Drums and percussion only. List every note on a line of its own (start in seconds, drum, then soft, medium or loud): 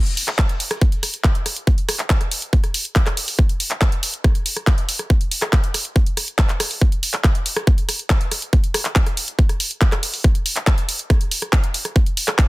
0.06 closed hi-hat medium
0.17 open hi-hat loud
0.28 cross-stick soft
0.28 clap soft
0.28 closed hi-hat medium
0.39 kick loud
0.39 clap loud
0.39 closed hi-hat medium
0.49 closed hi-hat medium
0.60 open hi-hat loud
0.71 cross-stick medium
0.71 closed hi-hat medium
0.81 kick loud
0.81 closed hi-hat medium
0.92 closed hi-hat medium
1.03 cross-stick soft
1.03 open hi-hat loud
1.14 closed hi-hat medium
1.24 kick loud
1.24 clap loud
1.24 closed hi-hat medium
1.35 closed hi-hat medium
1.46 cross-stick soft
1.46 open hi-hat loud
1.56 closed hi-hat medium
1.67 kick loud
1.67 closed hi-hat medium
1.78 closed hi-hat medium
1.89 cross-stick medium
1.89 open hi-hat loud
1.99 clap soft
1.99 closed hi-hat medium
2.10 kick loud
2.10 clap loud
2.10 closed hi-hat medium
2.21 cross-stick soft
2.21 closed hi-hat medium
2.31 open hi-hat loud
2.42 closed hi-hat medium
2.53 kick loud
2.53 closed hi-hat medium
2.64 cross-stick soft
2.64 closed hi-hat medium
2.74 open hi-hat loud
2.85 closed hi-hat medium
2.96 kick loud
2.96 clap loud
2.96 closed hi-hat medium
3.06 cross-stick medium
3.06 clap soft
3.06 closed hi-hat medium
3.17 open hi-hat loud
3.28 open hi-hat medium
3.39 kick loud
3.39 cross-stick soft
3.49 closed hi-hat medium
3.60 open hi-hat loud
3.71 clap soft
3.71 closed hi-hat soft
3.81 kick loud
3.81 cross-stick soft
3.81 clap loud
3.81 closed hi-hat medium
3.92 closed hi-hat medium
4.03 open hi-hat loud
4.14 closed hi-hat medium
4.24 kick loud
4.24 cross-stick medium
4.24 closed hi-hat medium
4.35 closed hi-hat medium
4.46 open hi-hat loud
4.57 cross-stick soft
4.57 closed hi-hat medium
4.67 kick loud
4.67 clap loud
4.67 closed hi-hat medium
4.78 closed hi-hat medium
4.89 open hi-hat loud
4.99 cross-stick soft
4.99 closed hi-hat medium
5.10 kick loud
5.10 closed hi-hat medium
5.21 closed hi-hat medium
5.31 open hi-hat loud
5.42 cross-stick medium
5.42 clap soft
5.42 closed hi-hat medium
5.53 kick loud
5.53 clap loud
5.53 closed hi-hat medium
5.64 closed hi-hat medium
5.74 cross-stick soft
5.74 open hi-hat loud
5.85 closed hi-hat soft
5.96 kick loud
5.96 closed hi-hat medium
6.06 closed hi-hat medium
6.17 cross-stick soft
6.17 open hi-hat loud
6.28 closed hi-hat soft
6.39 kick loud
6.39 clap loud
6.39 closed hi-hat medium
6.49 clap soft
6.49 closed hi-hat medium
6.60 cross-stick medium
6.60 open hi-hat loud
6.71 open hi-hat medium
6.81 kick loud
6.81 closed hi-hat medium
6.92 closed hi-hat medium
7.03 open hi-hat loud
7.14 cross-stick soft
7.14 clap soft
7.14 closed hi-hat soft
7.24 kick loud
7.24 clap loud
7.24 closed hi-hat medium
7.35 closed hi-hat soft
7.46 open hi-hat loud
7.57 cross-stick medium
7.57 closed hi-hat medium
7.67 kick loud
7.67 closed hi-hat medium
7.78 closed hi-hat medium
7.89 cross-stick soft
7.89 open hi-hat loud
7.99 closed hi-hat soft
8.10 kick loud
8.10 clap loud
8.10 closed hi-hat medium
8.21 closed hi-hat soft
8.31 cross-stick soft
8.31 open hi-hat loud
8.42 closed hi-hat medium
8.53 kick loud
8.53 closed hi-hat medium
8.64 closed hi-hat medium
8.74 cross-stick medium
8.74 open hi-hat loud
8.85 clap soft
8.85 closed hi-hat medium
8.96 kick loud
8.96 clap loud
8.96 closed hi-hat medium
9.06 cross-stick soft
9.06 closed hi-hat medium
9.17 open hi-hat loud
9.28 closed hi-hat medium
9.39 kick loud
9.39 closed hi-hat medium
9.49 cross-stick soft
9.49 closed hi-hat medium
9.60 open hi-hat loud
9.71 closed hi-hat medium
9.81 kick loud
9.81 clap loud
9.81 closed hi-hat medium
9.92 cross-stick medium
9.92 clap soft
9.92 closed hi-hat medium
10.03 open hi-hat loud
10.14 open hi-hat medium
10.24 kick loud
10.24 cross-stick soft
10.24 closed hi-hat medium
10.35 closed hi-hat medium
10.46 open hi-hat loud
10.56 clap soft
10.56 closed hi-hat medium
10.67 kick loud
10.67 cross-stick soft
10.67 clap loud
10.67 closed hi-hat medium
10.78 closed hi-hat medium
10.89 open hi-hat loud
10.99 closed hi-hat medium
11.10 kick loud
11.10 cross-stick medium
11.10 closed hi-hat medium
11.21 closed hi-hat medium
11.31 open hi-hat loud
11.42 cross-stick soft
11.42 closed hi-hat medium
11.53 kick loud
11.53 clap loud
11.53 closed hi-hat medium
11.64 closed hi-hat medium
11.74 open hi-hat loud
11.85 cross-stick soft
11.85 closed hi-hat medium
11.96 kick loud
11.96 closed hi-hat medium
12.06 closed hi-hat medium
12.17 open hi-hat loud
12.28 cross-stick medium
12.28 clap soft
12.28 closed hi-hat medium
12.39 kick loud
12.39 clap loud
12.39 closed hi-hat medium